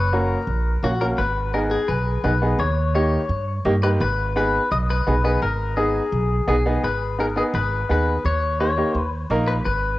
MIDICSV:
0, 0, Header, 1, 4, 480
1, 0, Start_track
1, 0, Key_signature, 5, "minor"
1, 0, Tempo, 352941
1, 1612, Time_signature, 4, 2, 24, 8
1, 13585, End_track
2, 0, Start_track
2, 0, Title_t, "Clean electric guitar"
2, 0, Program_c, 0, 27
2, 0, Note_on_c, 0, 71, 88
2, 184, Note_off_c, 0, 71, 0
2, 184, Note_on_c, 0, 70, 83
2, 1143, Note_on_c, 0, 66, 68
2, 1167, Note_off_c, 0, 70, 0
2, 1361, Note_off_c, 0, 66, 0
2, 1375, Note_on_c, 0, 70, 86
2, 1443, Note_off_c, 0, 70, 0
2, 1608, Note_on_c, 0, 71, 84
2, 2056, Note_off_c, 0, 71, 0
2, 2094, Note_on_c, 0, 70, 71
2, 2162, Note_off_c, 0, 70, 0
2, 2327, Note_on_c, 0, 68, 74
2, 2560, Note_on_c, 0, 71, 79
2, 2577, Note_off_c, 0, 68, 0
2, 3012, Note_off_c, 0, 71, 0
2, 3051, Note_on_c, 0, 71, 71
2, 3498, Note_off_c, 0, 71, 0
2, 3531, Note_on_c, 0, 73, 82
2, 3999, Note_off_c, 0, 73, 0
2, 4015, Note_on_c, 0, 73, 74
2, 4683, Note_off_c, 0, 73, 0
2, 5214, Note_on_c, 0, 71, 82
2, 5282, Note_off_c, 0, 71, 0
2, 5461, Note_on_c, 0, 71, 80
2, 5903, Note_off_c, 0, 71, 0
2, 5943, Note_on_c, 0, 71, 89
2, 6410, Note_off_c, 0, 71, 0
2, 6415, Note_on_c, 0, 75, 89
2, 6483, Note_off_c, 0, 75, 0
2, 6668, Note_on_c, 0, 71, 89
2, 7107, Note_off_c, 0, 71, 0
2, 7136, Note_on_c, 0, 71, 77
2, 7372, Note_off_c, 0, 71, 0
2, 7377, Note_on_c, 0, 70, 84
2, 7821, Note_off_c, 0, 70, 0
2, 7846, Note_on_c, 0, 68, 68
2, 8802, Note_off_c, 0, 68, 0
2, 8819, Note_on_c, 0, 68, 60
2, 9300, Note_off_c, 0, 68, 0
2, 9306, Note_on_c, 0, 71, 76
2, 9746, Note_off_c, 0, 71, 0
2, 9794, Note_on_c, 0, 70, 76
2, 9862, Note_off_c, 0, 70, 0
2, 10027, Note_on_c, 0, 68, 63
2, 10095, Note_off_c, 0, 68, 0
2, 10265, Note_on_c, 0, 71, 82
2, 10742, Note_off_c, 0, 71, 0
2, 10759, Note_on_c, 0, 71, 74
2, 11221, Note_off_c, 0, 71, 0
2, 11227, Note_on_c, 0, 73, 92
2, 11667, Note_off_c, 0, 73, 0
2, 11704, Note_on_c, 0, 73, 80
2, 12369, Note_off_c, 0, 73, 0
2, 12887, Note_on_c, 0, 71, 84
2, 12955, Note_off_c, 0, 71, 0
2, 13130, Note_on_c, 0, 71, 84
2, 13585, Note_off_c, 0, 71, 0
2, 13585, End_track
3, 0, Start_track
3, 0, Title_t, "Upright piano"
3, 0, Program_c, 1, 0
3, 174, Note_on_c, 1, 58, 61
3, 178, Note_on_c, 1, 61, 58
3, 183, Note_on_c, 1, 66, 68
3, 509, Note_off_c, 1, 58, 0
3, 511, Note_off_c, 1, 61, 0
3, 513, Note_off_c, 1, 66, 0
3, 1134, Note_on_c, 1, 58, 64
3, 1140, Note_on_c, 1, 61, 58
3, 1147, Note_on_c, 1, 66, 71
3, 1217, Note_off_c, 1, 58, 0
3, 1220, Note_off_c, 1, 61, 0
3, 1224, Note_off_c, 1, 66, 0
3, 1379, Note_on_c, 1, 58, 56
3, 1380, Note_on_c, 1, 61, 52
3, 1385, Note_on_c, 1, 66, 59
3, 1615, Note_off_c, 1, 58, 0
3, 1616, Note_off_c, 1, 61, 0
3, 1618, Note_off_c, 1, 66, 0
3, 2092, Note_on_c, 1, 59, 58
3, 2096, Note_on_c, 1, 63, 60
3, 2098, Note_on_c, 1, 68, 68
3, 2428, Note_off_c, 1, 59, 0
3, 2430, Note_off_c, 1, 63, 0
3, 2431, Note_off_c, 1, 68, 0
3, 3045, Note_on_c, 1, 59, 67
3, 3053, Note_on_c, 1, 63, 58
3, 3059, Note_on_c, 1, 68, 67
3, 3133, Note_off_c, 1, 59, 0
3, 3137, Note_off_c, 1, 63, 0
3, 3139, Note_off_c, 1, 68, 0
3, 3288, Note_on_c, 1, 59, 61
3, 3293, Note_on_c, 1, 63, 55
3, 3300, Note_on_c, 1, 68, 69
3, 3530, Note_off_c, 1, 59, 0
3, 3532, Note_off_c, 1, 63, 0
3, 3536, Note_off_c, 1, 68, 0
3, 4003, Note_on_c, 1, 58, 58
3, 4011, Note_on_c, 1, 63, 59
3, 4014, Note_on_c, 1, 67, 72
3, 4343, Note_off_c, 1, 58, 0
3, 4348, Note_off_c, 1, 63, 0
3, 4349, Note_off_c, 1, 67, 0
3, 4967, Note_on_c, 1, 58, 80
3, 4971, Note_on_c, 1, 63, 68
3, 4975, Note_on_c, 1, 67, 82
3, 5053, Note_off_c, 1, 58, 0
3, 5056, Note_off_c, 1, 63, 0
3, 5057, Note_off_c, 1, 67, 0
3, 5205, Note_on_c, 1, 58, 61
3, 5216, Note_on_c, 1, 67, 64
3, 5217, Note_on_c, 1, 63, 52
3, 5448, Note_off_c, 1, 58, 0
3, 5454, Note_off_c, 1, 63, 0
3, 5454, Note_off_c, 1, 67, 0
3, 5927, Note_on_c, 1, 59, 67
3, 5933, Note_on_c, 1, 63, 55
3, 5938, Note_on_c, 1, 68, 71
3, 6265, Note_off_c, 1, 59, 0
3, 6268, Note_off_c, 1, 63, 0
3, 6271, Note_off_c, 1, 68, 0
3, 6892, Note_on_c, 1, 59, 67
3, 6899, Note_on_c, 1, 63, 57
3, 6906, Note_on_c, 1, 68, 74
3, 6976, Note_off_c, 1, 59, 0
3, 6979, Note_off_c, 1, 63, 0
3, 6983, Note_off_c, 1, 68, 0
3, 7128, Note_on_c, 1, 59, 64
3, 7133, Note_on_c, 1, 63, 52
3, 7135, Note_on_c, 1, 68, 68
3, 7382, Note_off_c, 1, 59, 0
3, 7384, Note_off_c, 1, 63, 0
3, 7385, Note_off_c, 1, 68, 0
3, 7846, Note_on_c, 1, 59, 61
3, 7849, Note_on_c, 1, 63, 55
3, 7858, Note_on_c, 1, 68, 69
3, 8185, Note_off_c, 1, 59, 0
3, 8186, Note_off_c, 1, 63, 0
3, 8191, Note_off_c, 1, 68, 0
3, 8808, Note_on_c, 1, 59, 71
3, 8812, Note_on_c, 1, 63, 64
3, 8820, Note_on_c, 1, 68, 87
3, 8894, Note_off_c, 1, 59, 0
3, 8896, Note_off_c, 1, 63, 0
3, 8900, Note_off_c, 1, 68, 0
3, 9055, Note_on_c, 1, 59, 73
3, 9060, Note_on_c, 1, 63, 61
3, 9068, Note_on_c, 1, 68, 75
3, 9294, Note_off_c, 1, 59, 0
3, 9296, Note_off_c, 1, 63, 0
3, 9300, Note_off_c, 1, 68, 0
3, 9773, Note_on_c, 1, 59, 55
3, 9775, Note_on_c, 1, 63, 51
3, 9783, Note_on_c, 1, 68, 66
3, 9856, Note_off_c, 1, 59, 0
3, 9857, Note_off_c, 1, 63, 0
3, 9862, Note_off_c, 1, 68, 0
3, 10011, Note_on_c, 1, 59, 58
3, 10017, Note_on_c, 1, 63, 55
3, 10023, Note_on_c, 1, 71, 62
3, 10264, Note_off_c, 1, 59, 0
3, 10267, Note_off_c, 1, 63, 0
3, 10270, Note_off_c, 1, 71, 0
3, 10734, Note_on_c, 1, 59, 59
3, 10734, Note_on_c, 1, 63, 55
3, 10743, Note_on_c, 1, 68, 67
3, 11070, Note_off_c, 1, 59, 0
3, 11070, Note_off_c, 1, 63, 0
3, 11074, Note_off_c, 1, 68, 0
3, 11696, Note_on_c, 1, 58, 60
3, 11700, Note_on_c, 1, 63, 59
3, 11703, Note_on_c, 1, 67, 64
3, 11779, Note_off_c, 1, 58, 0
3, 11781, Note_off_c, 1, 63, 0
3, 11782, Note_off_c, 1, 67, 0
3, 11930, Note_on_c, 1, 58, 60
3, 11936, Note_on_c, 1, 63, 51
3, 11941, Note_on_c, 1, 67, 64
3, 12184, Note_off_c, 1, 58, 0
3, 12187, Note_off_c, 1, 63, 0
3, 12189, Note_off_c, 1, 67, 0
3, 12653, Note_on_c, 1, 58, 76
3, 12658, Note_on_c, 1, 63, 70
3, 12663, Note_on_c, 1, 70, 83
3, 12990, Note_off_c, 1, 58, 0
3, 12992, Note_off_c, 1, 63, 0
3, 12995, Note_off_c, 1, 70, 0
3, 13585, End_track
4, 0, Start_track
4, 0, Title_t, "Upright bass"
4, 0, Program_c, 2, 32
4, 0, Note_on_c, 2, 30, 84
4, 458, Note_off_c, 2, 30, 0
4, 642, Note_on_c, 2, 34, 85
4, 1030, Note_off_c, 2, 34, 0
4, 1127, Note_on_c, 2, 34, 82
4, 1513, Note_off_c, 2, 34, 0
4, 1609, Note_on_c, 2, 32, 86
4, 2378, Note_off_c, 2, 32, 0
4, 2567, Note_on_c, 2, 35, 82
4, 2953, Note_off_c, 2, 35, 0
4, 3044, Note_on_c, 2, 35, 91
4, 3431, Note_off_c, 2, 35, 0
4, 3517, Note_on_c, 2, 39, 90
4, 4291, Note_off_c, 2, 39, 0
4, 4478, Note_on_c, 2, 43, 90
4, 4867, Note_off_c, 2, 43, 0
4, 4963, Note_on_c, 2, 43, 97
4, 5350, Note_off_c, 2, 43, 0
4, 5445, Note_on_c, 2, 32, 93
4, 6215, Note_off_c, 2, 32, 0
4, 6414, Note_on_c, 2, 35, 86
4, 6797, Note_off_c, 2, 35, 0
4, 6898, Note_on_c, 2, 35, 95
4, 7279, Note_off_c, 2, 35, 0
4, 7370, Note_on_c, 2, 32, 91
4, 8139, Note_off_c, 2, 32, 0
4, 8327, Note_on_c, 2, 35, 87
4, 8713, Note_off_c, 2, 35, 0
4, 8809, Note_on_c, 2, 35, 89
4, 9194, Note_off_c, 2, 35, 0
4, 9295, Note_on_c, 2, 32, 82
4, 10062, Note_off_c, 2, 32, 0
4, 10250, Note_on_c, 2, 32, 97
4, 10635, Note_off_c, 2, 32, 0
4, 10740, Note_on_c, 2, 39, 82
4, 11122, Note_off_c, 2, 39, 0
4, 11214, Note_on_c, 2, 39, 91
4, 11982, Note_off_c, 2, 39, 0
4, 12168, Note_on_c, 2, 39, 89
4, 12554, Note_off_c, 2, 39, 0
4, 12647, Note_on_c, 2, 34, 91
4, 13034, Note_off_c, 2, 34, 0
4, 13138, Note_on_c, 2, 32, 92
4, 13585, Note_off_c, 2, 32, 0
4, 13585, End_track
0, 0, End_of_file